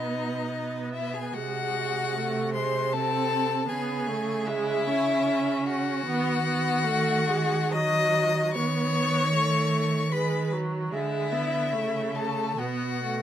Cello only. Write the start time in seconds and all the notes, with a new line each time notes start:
Already playing: B2
1.34 C3
3.68 C#3
6.05 D#3
8.55 D#3
10.92 D3
11.73 C#3
12.58 B2